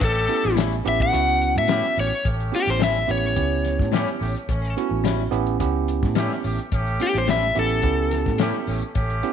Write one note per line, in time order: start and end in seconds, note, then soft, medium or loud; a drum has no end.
0.01 0.26 A1 loud
0.01 0.58 A3 medium
0.01 0.58 C#4 medium
0.01 0.58 G4 medium
0.01 0.57 A4 loud
0.01 kick loud
0.01 closed hi-hat medium
0.29 0.79 B3 medium
0.29 0.79 C#4 medium
0.29 0.79 E4 medium
0.29 0.79 G4 medium
0.29 closed hi-hat medium
0.45 0.81 A1 loud
0.56 0.74 A2 medium
0.56 0.75 G3 medium
0.56 0.75 C#4 medium
0.56 0.75 E4 loud
0.56 snare loud
0.56 closed hi-hat medium
0.72 closed hi-hat soft
0.85 1.10 A1 medium
0.85 1.10 B3 medium
0.85 1.10 C#4 medium
0.85 1.10 E4 medium
0.85 1.10 G4 loud
0.85 1.01 E5 medium
0.85 closed hi-hat medium
1.00 1.55 F#5 medium
1.00 kick medium
1.12 1.57 C#2 medium
1.12 2.12 B3 medium
1.12 2.12 C#4 medium
1.12 2.12 E4 medium
1.12 2.12 F#4 medium
1.12 closed hi-hat medium
1.29 closed hi-hat soft
1.42 closed hi-hat medium
1.56 1.81 A2 medium
1.56 1.97 E5 loud
1.56 closed hi-hat soft
1.68 1.86 A2 medium
1.68 1.86 G3 medium
1.68 1.84 A3 medium
1.68 1.84 C#4 medium
1.68 1.87 C#4 medium
1.68 1.87 E4 medium
1.68 1.84 G4 medium
1.68 snare loud
1.68 closed hi-hat medium
1.97 2.10 A1 medium
1.97 2.12 A3 medium
1.97 2.12 C#4 medium
1.97 2.12 G4 medium
1.97 2.26 C#5 loud
1.97 open hi-hat medium
2.12 closed hi-hat soft
2.24 2.50 A1 medium
2.24 2.80 A3 medium
2.24 2.80 C#4 medium
2.24 2.80 G4 medium
2.24 kick loud
2.24 closed hi-hat medium
2.40 closed hi-hat soft
2.52 3.02 B3 medium
2.52 3.02 C#4 medium
2.52 3.02 E4 medium
2.52 3.02 G4 medium
2.52 closed hi-hat medium
2.56 2.69 G4 medium
2.67 3.04 A1 medium
2.67 2.82 C5 medium
2.67 closed hi-hat soft
2.79 2.98 A2 medium
2.79 2.98 G3 medium
2.79 2.98 C#4 medium
2.79 2.99 E4 loud
2.79 snare loud
2.79 closed hi-hat medium
2.84 3.09 E5 medium
2.95 closed hi-hat soft
3.07 3.34 A1 medium
3.07 3.33 B3 medium
3.07 3.33 C#4 medium
3.07 3.33 E4 medium
3.07 3.34 G4 medium
3.07 4.74 C#5 medium
3.07 closed hi-hat medium
3.24 snare soft
3.24 closed hi-hat soft
3.36 3.81 C#2 medium
3.36 4.35 B3 medium
3.36 4.35 C#4 medium
3.36 4.35 E4 medium
3.36 4.36 G4 medium
3.36 kick medium
3.36 closed hi-hat medium
3.65 snare soft
3.65 closed hi-hat medium
3.79 4.04 A2 medium
3.79 kick medium
3.79 snare soft
3.92 4.10 A2 medium
3.92 4.10 G3 medium
3.92 4.08 A3 medium
3.92 4.07 C#4 medium
3.92 4.10 C#4 medium
3.92 4.11 E4 medium
3.92 4.08 G4 loud
3.92 snare loud
3.92 closed hi-hat medium
4.08 closed hi-hat soft
4.19 4.34 A1 medium
4.19 4.35 A3 medium
4.19 4.35 C#4 medium
4.19 4.35 G4 medium
4.19 open hi-hat medium
4.37 closed hi-hat soft
4.49 4.74 A1 medium
4.49 5.05 A3 medium
4.49 5.05 C#4 medium
4.49 kick loud
4.49 closed hi-hat medium
4.65 closed hi-hat soft
4.77 5.26 B3 medium
4.77 5.26 C#4 medium
4.77 5.27 E4 medium
4.77 5.27 F#4 medium
4.77 closed hi-hat medium
4.91 5.28 A1 loud
5.04 5.22 A2 medium
5.04 5.22 G3 loud
5.04 5.23 C#4 medium
5.04 5.23 E4 loud
5.04 snare medium
5.04 closed hi-hat medium
5.31 5.57 A1 medium
5.31 5.57 B3 loud
5.31 5.57 C#4 medium
5.31 5.57 E4 medium
5.31 5.57 G4 loud
5.31 closed hi-hat medium
5.47 closed hi-hat soft
5.60 6.04 C#2 medium
5.60 6.59 B3 medium
5.60 6.59 C#4 medium
5.60 6.60 E4 medium
5.60 6.60 G4 medium
5.60 kick medium
5.60 closed hi-hat medium
5.88 closed hi-hat medium
6.03 6.28 A2 medium
6.03 kick medium
6.03 snare soft
6.03 closed hi-hat soft
6.15 6.33 A2 medium
6.15 6.34 G3 medium
6.15 6.31 A3 medium
6.15 6.31 C#4 medium
6.15 6.34 C#4 medium
6.15 6.34 E4 medium
6.15 6.31 G4 loud
6.15 snare loud
6.15 closed hi-hat medium
6.32 snare soft
6.44 6.57 A1 medium
6.44 6.59 A3 medium
6.44 6.59 C#4 medium
6.44 6.60 G4 medium
6.44 open hi-hat medium
6.59 closed hi-hat soft
6.71 6.97 A1 loud
6.71 7.28 A3 medium
6.71 7.28 C#4 medium
6.71 7.28 G4 loud
6.71 kick loud
6.71 closed hi-hat medium
6.87 closed hi-hat soft
7.00 7.50 B3 medium
7.00 7.50 C#4 medium
7.00 7.50 E4 medium
7.00 7.50 G4 medium
7.00 7.16 G4 medium
7.00 closed hi-hat medium
7.14 7.52 A1 loud
7.14 closed hi-hat soft
7.18 7.29 C5 medium
7.28 7.45 A2 medium
7.28 7.46 G3 medium
7.28 7.46 C#4 medium
7.28 7.46 E4 medium
7.28 7.57 E5 medium
7.28 snare medium
7.28 closed hi-hat medium
7.43 closed hi-hat soft
7.55 7.81 A1 medium
7.55 7.80 B3 medium
7.55 7.81 C#4 medium
7.55 7.81 E4 medium
7.55 7.81 G4 medium
7.55 closed hi-hat medium
7.59 9.21 A4 medium
7.70 closed hi-hat soft
7.82 8.28 C#2 medium
7.82 8.83 B3 medium
7.82 8.83 C#4 medium
7.82 8.83 E4 medium
7.82 8.83 G4 medium
7.82 kick medium
7.82 closed hi-hat medium
8.11 snare soft
8.11 closed hi-hat medium
8.26 8.51 A2 medium
8.26 kick medium
8.26 snare soft
8.38 8.57 A2 medium
8.38 8.58 G3 medium
8.38 8.55 A3 medium
8.38 8.55 C#4 medium
8.38 8.58 C#4 medium
8.38 8.58 E4 medium
8.38 8.55 G4 loud
8.38 snare loud
8.38 closed hi-hat loud
8.54 closed hi-hat soft
8.67 8.81 A1 medium
8.67 8.83 A3 medium
8.67 8.83 C#4 medium
8.67 8.83 G4 medium
8.67 open hi-hat medium
8.82 closed hi-hat soft
8.94 9.21 A1 loud
8.94 9.33 A3 medium
8.94 9.33 C#4 medium
8.94 9.33 G4 loud
8.94 kick loud
8.94 closed hi-hat medium
9.10 closed hi-hat soft
9.23 9.33 B3 medium
9.23 9.33 C#4 medium
9.23 9.33 E4 medium
9.23 9.33 G4 medium
9.23 closed hi-hat medium